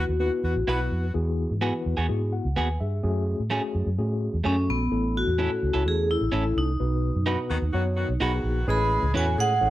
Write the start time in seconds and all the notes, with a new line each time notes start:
Already playing: B3 E4 F#4 B4
0.09 D#2
0.19 B3 D#4 F#4 B4
0.26 E4
0.44 E2 B3 F#4
0.56 A1
0.67 B1 B3 E4 F#4 B4
0.91 F2
1.14 E2 E3 B3 E4 F#4 G#4
1.51 G#2
1.61 B3 E4 F#4 G#4 B4
1.86 E2
1.97 E2 B3 F#4 G#4
2.09 G#2 B3 E4 F#4 G#4
2.33 F#5
2.45 C#2
2.56 D#2 B3 F#4 G#4 B4 G#5
2.80 G2 G#4 E5
3.03 F#2 A3 C#4 F#4 G#4
3.40 A2
3.50 A3 C#4 F#4 G#4
3.75 F#2
3.86 F#2
3.98 A2 A3 C#4 F#4 G#4
4.34 E2
4.44 F#2 A3 C#4 F#4 G#4 A4
4.69 A#1 B3
4.91 A1 A2 A3 C#4 E4 A4
5.17 F#4
5.27 E2
5.38 A3 C#4 E4 A4
5.63 C#2
5.74 C#2 C#4 E4 A4
5.86 E2 A3 C#4 E4 G#4 A4
6.11 E4
6.21 A1
6.32 A1 A3 C#4 E4 A4
6.56 C2 D#4
6.80 B1 B2 B3 D#4 F#4 B4
7.15 F#2
7.26 B3 D4 D#4 F#4 B4
7.32 D#4
7.49 D#2 D#3 B3 F#4
7.62 D#2
7.72 F#2 D#3 B3 D#4 F#4 C#5
7.96 D#3 B3 F#4
8.09 B1
8.20 B1 D#3 B3 D#4 F#4 G#4 B4
8.44 A#1
8.67 A1 A2 G#3 A3 C#4 E4 G#4 B4 B5
9.03 C#2
9.14 E2 F#3 C#4 E4 F#4 A4 B4 C#5 G#5
9.38 A2 G#3 G#4 F#5
9.61 A1 C#4 E4 A4 C#5